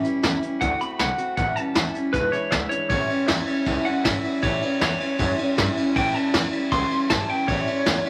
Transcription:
0.03 steel-string acoustic guitar G3 C#4 E4, muted upright bass stroke, closed hi-hat
0.22 upright bass E2, steel-string acoustic guitar E3 G3 C#4 E4, snare, closed hi-hat
0.41 steel-string acoustic guitar G3 C#4 E4, muted upright bass stroke, closed hi-hat
0.61 upright bass D2, steel-string acoustic guitar D3 A3 C4 F#4, clean electric guitar F#5, kick, closed hi-hat
0.79 steel-string acoustic guitar A3 C4 F#4, clean electric guitar B5, closed hi-hat
0.99 upright bass C2, steel-string acoustic guitar D3 A3 C4 F#4, clean electric guitar F#5, snare, closed hi-hat
1.18 steel-string acoustic guitar A3 C4 F#4, muted upright bass stroke, closed hi-hat
1.37 upright bass A1, steel-string acoustic guitar A2 E3 G3 C#4 E4, clean electric guitar F#5, kick, closed hi-hat
1.56 steel-string acoustic guitar G3 C#4 E4, clean electric guitar A5, muted upright bass stroke, closed hi-hat
1.74 upright bass E2, steel-string acoustic guitar E3 G3 C#4 E4, snare, closed hi-hat
1.94 steel-string acoustic guitar G3 C#4 E4, closed hi-hat
2.13 upright bass E1, steel-string acoustic guitar E2 B2 E3 G#3 D4 E4, clean electric guitar B4, kick, closed hi-hat
2.32 steel-string acoustic guitar E3 G#3 D4 E4, clean electric guitar C#5, muted upright bass stroke, closed hi-hat
2.51 upright bass D2, steel-string acoustic guitar E3 G#3 D4 E4, clean electric guitar E5, kick, snare, closed hi-hat
2.69 steel-string acoustic guitar G#3 D4 E4, clean electric guitar C#5, closed hi-hat
2.73 steel-string acoustic guitar E3
2.89 upright bass A1, steel-string acoustic guitar A2 E3 G3 C#4 E4, clean electric guitar C#5, kick, ride
3.08 steel-string acoustic guitar G3 C#4 E4, muted upright bass stroke, ride
3.27 upright bass E2, steel-string acoustic guitar E3 G3 C#4 E4, clean electric guitar E5, snare, ride
3.46 steel-string acoustic guitar G3 C#4 E4, clean electric guitar C#5, ride
3.65 upright bass C#2, steel-string acoustic guitar A2 E3 G3 C#4 E4, kick, ride
3.84 steel-string acoustic guitar G3 C#4 E4, clean electric guitar F#5, muted upright bass stroke, ride
4.04 upright bass G1, steel-string acoustic guitar E3 G3 C#4 E4, clean electric guitar E5, kick, snare, ride
4.23 steel-string acoustic guitar G3 C#4 E4, ride
4.42 upright bass A1, steel-string acoustic guitar A2 E3 G3 C#4 E4, clean electric guitar C#5, kick, ride
4.61 steel-string acoustic guitar G3 C#4 E4, muted upright bass stroke, ride
4.79 upright bass E2, steel-string acoustic guitar E3 G3 C#4 E4, clean electric guitar C#5, snare, ride
4.99 steel-string acoustic guitar G3 C#4 E4, ride
5.18 upright bass F#2, steel-string acoustic guitar A2 E3 G3 C#4 E4, kick, ride
5.37 steel-string acoustic guitar G3 C#4 E4, ride
5.55 upright bass G2, steel-string acoustic guitar E3 G3 C#4 E4, kick, snare, ride
5.76 steel-string acoustic guitar G3 C#4 E4, muted upright bass stroke, ride
5.95 upright bass A1, steel-string acoustic guitar A2 E3 G3 C#4 E4, clean electric guitar G5, kick, ride
6.14 steel-string acoustic guitar G3 C#4 E4, clean electric guitar A5, muted upright bass stroke, ride
6.34 upright bass E2, steel-string acoustic guitar E3 G3 C#4 E4, snare, ride
6.52 steel-string acoustic guitar G3 C#4 E4, ride
6.72 upright bass C#2, steel-string acoustic guitar A2 E3 G3 C#4 E4, clean electric guitar C6, kick, ride
6.90 steel-string acoustic guitar G3 C#4 E4, ride
7.10 upright bass G1, steel-string acoustic guitar E3 G3 C#4 E4, clean electric guitar A5, kick, snare, ride
7.29 steel-string acoustic guitar G3 C#4 E4, clean electric guitar G5, muted upright bass stroke, ride
7.48 upright bass A1, steel-string acoustic guitar A2 E3 G3 C#4 E4, clean electric guitar C#5, kick, ride
7.67 steel-string acoustic guitar G3 C#4 E4, muted upright bass stroke, ride
7.86 upright bass E2, steel-string acoustic guitar E3 G3 C#4 E4, snare, ride
8.04 steel-string acoustic guitar C#4 E4, muted upright bass stroke, ride

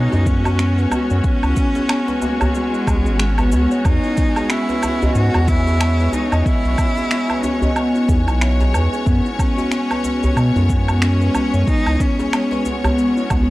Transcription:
Already playing: string section G#3 C#4 F#4 C#5, cello D#4, synth texture G#5
0.12 analog synth bass F#2, kalimba E4, djembe tone, shaker
0.26 kalimba B3, cello C#4, kick, shaker
0.44 kalimba F#4, djembe tone, low woodblock, shaker
0.59 kalimba B3, finger snap, shaker
0.78 kalimba B4, shaker
0.91 cello B3, kalimba B3, djembe tone, low woodblock, shaker
1.10 analog synth bass F#2, kalimba C#5, shaker
1.24 kalimba B3, cello C#4, kick, shaker
1.43 analog synth bass C#2, kalimba E4, low woodblock, shaker
1.56 kalimba B3, kick, shaker
1.75 kalimba G#4, djembe slap, shaker
1.89 kalimba B3, finger snap, low woodblock, shaker
2.08 kalimba B4, djembe slap, shaker
2.21 cello A#3, kalimba B3, djembe tone, shaker
2.40 kalimba C#5, djembe bass, low woodblock, shaker
2.54 cello G#3, kalimba B3, shaker
2.73 kalimba E4, shaker
2.87 analog synth bass C#2, kalimba B3, kick, djembe tone, low woodblock, shaker
3.05 analog synth bass G#1, kalimba G#4, djembe slap, shaker
3.19 kalimba B3, cello B3, finger snap, shaker
3.38 kalimba B4, djembe slap, djembe tone, low woodblock, shaker
3.52 analog synth bass C#2, kalimba B3, djembe tone, shaker
3.71 kalimba C#5, shaker
3.85 analog synth bass E2, kalimba B3, cello D#4, kick, low woodblock, shaker
4.04 kalimba E4, shaker
4.17 kalimba B3, kick, shaker
4.36 kalimba G#4, djembe slap, low woodblock, shaker
4.50 kalimba B3, cello E4, finger snap, shaker
4.69 kalimba B4, djembe slap, shaker
4.83 kalimba B3, djembe tone, low woodblock, shaker
5.02 kalimba D#5, djembe bass, shaker
5.15 analog synth bass G#2, kalimba B3, cello F#4, shaker
5.34 analog synth bass E2, kalimba E4, djembe tone, low woodblock, shaker
5.48 kalimba B3, cello E4, kick, shaker
5.67 kalimba G#4, djembe tone, shaker
5.81 kalimba B3, finger snap, low woodblock, shaker
6.00 kalimba B4, shaker
6.12 kalimba B3, cello D#4, djembe tone, shaker
6.32 analog synth bass E2, kalimba D#5, low woodblock, shaker
6.46 kalimba B3, cello E4, kick, shaker
6.65 analog synth bass B1, kalimba E4, shaker
6.78 kalimba B3, kick, low woodblock, shaker
6.97 kalimba G#4, djembe slap, shaker
7.11 kalimba B3, finger snap, shaker
7.30 kalimba B4, djembe slap, low woodblock, shaker
7.43 kalimba B3, cello C#4, djembe tone, shaker
7.62 kalimba D#5, djembe bass, shaker
7.76 cello B3, kalimba B3, low woodblock, shaker
7.95 kalimba E4, shaker
8.08 analog synth bass E2, kick, djembe tone, shaker
8.27 analog synth bass B1, kalimba E4, djembe slap, low woodblock, shaker
8.41 kalimba E5, finger snap, shaker
8.60 kalimba G#4, djembe slap, djembe tone, shaker
8.72 analog synth bass E2, kalimba B4, djembe tone, low woodblock, shaker
8.93 kalimba G#4, shaker
9.06 analog synth bass F#2, string section G#3, cello B3, kalimba B3, kick, shaker
9.25 kalimba E4, shaker
9.39 kalimba B3, cello C#4, kick, low woodblock, shaker
9.58 kalimba F#4, djembe slap, shaker
9.72 kalimba B3, finger snap, shaker
9.91 kalimba B4, djembe slap, low woodblock, shaker
10.04 kalimba B3, djembe tone, shaker
10.23 kalimba C#5, djembe bass, shaker
10.37 analog synth bass B2, kalimba B3, cello B3, low woodblock, shaker
10.56 analog synth bass F#2, kalimba E4, djembe tone, shaker
10.69 kalimba B3, kick, shaker
10.88 kalimba F#4, djembe tone, low woodblock, shaker
11.02 kalimba B3, cello C#4, finger snap, shaker
11.21 kalimba B4, shaker
11.35 kalimba B3, djembe tone, low woodblock, shaker
11.54 analog synth bass F#2, kalimba C#5, shaker
11.67 kalimba B3, cello D#4, kick, shaker
11.86 analog synth bass C#2, string section C#4, kalimba E4, low woodblock, shaker
12.00 kalimba B3, cello C#4, kick, shaker
12.19 kalimba G#4, djembe slap, shaker
12.33 kalimba B3, finger snap, low woodblock, shaker
12.51 kalimba B4, djembe slap, shaker
12.55 string section F#4
12.65 kalimba B3, cello B3, djembe tone, shaker
12.84 kalimba C#5, djembe bass, low woodblock, shaker
12.98 kalimba B3, shaker
13.17 kalimba E4, shaker
13.30 analog synth bass C#2, kalimba B3, kick, djembe tone, low woodblock, shaker

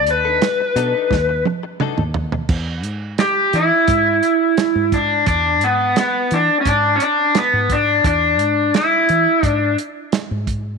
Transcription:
0.07 fingered electric bass D#2, muted clean electric guitar stroke, closed hi-hat
0.11 electric slide guitar B4
0.25 clean electric guitar D4 D#4 A4
0.42 muted clean electric guitar stroke, snare, closed hi-hat
0.60 muted clean electric guitar stroke
0.76 fingered electric bass B2, clean electric guitar F#3 D4 D#4 A4, closed hi-hat
0.94 clean electric guitar D4 D#4 A4
1.11 fingered electric bass D#2, kick, snare
1.29 muted clean electric guitar stroke
1.45 muted clean electric guitar stroke, high tom
1.63 muted clean electric guitar stroke
1.80 clean electric guitar F#3 D4 D#4 A4, mid tom
1.98 fingered electric bass D#2, mid tom
2.14 muted clean electric guitar stroke, floor tom
2.32 muted clean electric guitar stroke, floor tom
2.49 fingered electric bass E2, kick, crash
2.83 fingered electric bass G#2, closed hi-hat
3.18 electric slide guitar G4, snare, closed hi-hat
3.53 fingered electric bass E3, electric slide guitar E4, closed hi-hat
3.88 fingered electric bass G#2, kick, closed hi-hat
4.23 closed hi-hat
4.57 snare, closed hi-hat
4.75 fingered electric bass G#2
4.92 electric slide guitar D4, kick, closed hi-hat
5.26 fingered electric bass E2, electric slide guitar D4, kick, closed hi-hat
5.61 fingered electric bass G#2, electric slide guitar B3, closed hi-hat
5.96 electric slide guitar B3, snare, closed hi-hat
6.31 fingered electric bass E3, electric slide guitar D4, closed hi-hat
6.61 electric slide guitar C#4
6.65 fingered electric bass G#2, electric slide guitar D4, kick, closed hi-hat
6.96 electric slide guitar C#4
7.00 electric slide guitar D4, closed hi-hat
7.35 electric slide guitar B3, snare, closed hi-hat
7.53 fingered electric bass G#2
7.70 electric slide guitar D4, kick, closed hi-hat
8.04 fingered electric bass E2, electric slide guitar D4, kick, closed hi-hat
8.39 fingered electric bass G#2, closed hi-hat
8.74 electric slide guitar E4, snare, closed hi-hat
9.09 fingered electric bass E3, closed hi-hat
9.43 fingered electric bass G#2, electric slide guitar D4, kick, closed hi-hat
9.78 closed hi-hat
10.12 snare, closed hi-hat
10.31 fingered electric bass G#2
10.47 kick, closed hi-hat

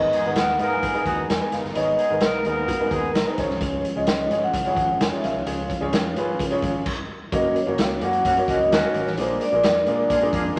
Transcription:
Already playing: tonewheel organ G#3 B3 A#4, upright piano B3 D#4 G#4 A#4, vibraphone D#5
0.13 horn section G#3 B3 D#4 G#4, closed hi-hat
0.25 fingered electric bass G#1, upright piano B3 D#4 G#4 A#4, vibraphone F#5
0.36 fingered electric bass D#2, horn section A#3 B3 D#4 A#4, snare, closed hi-hat
0.59 fingered electric bass G#2, horn section A#3 B3 D#4 A#4, upright piano B3 D#4 G#4 A#4, closed hi-hat
0.66 vibraphone A#5
0.73 vibraphone G#5
0.83 fingered electric bass G#2, kick, closed hi-hat
0.93 upright piano B3 D#4 G#4 A#4, closed hi-hat
1.05 fingered electric bass D#2, horn section F#3 B3 D#4 F#4, vibraphone G#5, kick, closed hi-hat
1.29 fingered electric bass F2, snare, closed hi-hat
1.40 upright piano B3 D#4 G#4 A#4
1.52 fingered electric bass F#1, vibraphone F5, snare, closed hi-hat
1.64 fingered electric bass G1, snare
1.75 fingered electric bass G#1, upright piano B3 D#4 G#4 C#5, vibraphone D#5, closed hi-hat
1.98 horn section G#3 B3 D#4 G#4, closed hi-hat
2.09 fingered electric bass G#1, upright piano B3 D#4 G#4 A#4, vibraphone D#5
2.21 fingered electric bass B1, horn section A#3 B3 D#4 A#4, vibraphone A#4, snare, closed hi-hat
2.44 fingered electric bass D#2, horn section A#3 B3 D#4 A#4, upright piano B3 D#4 G#4 A#4, vibraphone A#4, closed hi-hat
2.68 clean electric guitar F#4, kick, closed hi-hat
2.80 upright piano B3 D#4 G#4 A#4, muted fingered electric bass stroke
2.91 fingered electric bass D#2, horn section G#3 B3 D#4 G#4, clean electric guitar G#4, kick, closed hi-hat
3.14 fingered electric bass A#1, clean electric guitar A#4, snare, closed hi-hat
3.26 upright piano B3 D#4 G#4 A#4
3.31 vibraphone C5
3.38 fingered electric bass C#2, tonewheel organ F3 C#4, upright piano C#4 D#4 G#4 C#5, vibraphone C#5, kick, snare, closed hi-hat
3.44 upright piano F4
3.50 fingered electric bass C2, snare
3.61 fingered electric bass C#2, kick, closed hi-hat
3.85 closed hi-hat
3.96 fingered electric bass C#2, upright piano C#4 F4 G#4 C#5, vibraphone D#5
4.07 snare, closed hi-hat
4.31 fingered electric bass G#2, upright piano C#4 F4 G#4 C#5, closed hi-hat
4.44 vibraphone F#5
4.54 fingered electric bass C#3, kick, closed hi-hat
4.65 upright piano C#4 E4 G#4 C#5, closed hi-hat
4.72 upright piano F3
4.77 fingered electric bass G#1, kick, closed hi-hat
4.99 fingered electric bass F1, vibraphone G#5, snare, closed hi-hat
5.12 upright piano C#4 F4 G#4 C#5
5.17 vibraphone E5
5.23 fingered electric bass B1, vibraphone F5, snare, closed hi-hat
5.34 fingered electric bass C2
5.46 fingered electric bass C#2, upright piano C#4 F4 G#4 C#5, closed hi-hat
5.70 kick, closed hi-hat
5.80 fingered electric bass C#2, upright piano C#4 F4 G#4 C#5
5.92 fingered electric bass F2, snare, closed hi-hat
6.15 fingered electric bass G#2, upright piano C#4 F4 G#4 B4, closed hi-hat
6.39 fingered electric bass C#3, kick, closed hi-hat
6.50 upright piano C#4 F4 G#4 C#5, closed hi-hat
6.62 fingered electric bass G#1, kick, closed hi-hat
6.86 kick, crash
7.32 fingered electric bass F#1, tonewheel organ F#3 A#3 C#4, upright piano A#3 C#4 F#4 A#4 C#5, vibraphone D#5, kick, closed hi-hat
7.56 vibraphone C#5, closed hi-hat
7.66 fingered electric bass F#1, upright piano A#3 C#4 F#4 A#4 C#5
7.78 fingered electric bass C#2, vibraphone F5, snare, closed hi-hat
8.01 fingered electric bass F#2, upright piano A#3 C#4 F#4 A#4 C#5, vibraphone F#5, closed hi-hat
8.13 closed hi-hat
8.25 fingered electric bass F#2, horn section F#3 A#3 C#4 F#4, vibraphone F#5, kick, closed hi-hat
8.37 upright piano A#3 C#4 F#4 A#4 C#5, closed hi-hat
8.48 fingered electric bass C#2, horn section F#3 A#3 C#4 F#4, vibraphone D#5, kick, closed hi-hat
8.71 fingered electric bass D#2, horn section F#3 A#3 C#4 F#4, snare, closed hi-hat
8.84 upright piano A#3 C#4 F#4 A#4 C#5
8.94 fingered electric bass G#1, vibraphone C#5, closed hi-hat
9.06 fingered electric bass A1, snare
9.17 fingered electric bass A#1, tonewheel organ G#3 D4, upright piano A#3 D4 F4 G#4 A#4, vibraphone C5, closed hi-hat
9.41 vibraphone D5, closed hi-hat
9.52 fingered electric bass A#1, upright piano A#3 D4 F4 G#4 A#4
9.63 fingered electric bass F2, snare, closed hi-hat
9.87 fingered electric bass A#2, upright piano A#3 D4 F4 G#4 A#4, closed hi-hat
10.10 fingered electric bass A#2, horn section G#3 D4 F4 G#4, kick, closed hi-hat
10.21 upright piano A#3 D4 F4 G#4 A#4, closed hi-hat
10.33 fingered electric bass F2, horn section G#3 D4 F4 G#4, kick, closed hi-hat
10.55 fingered electric bass F2, horn section D4

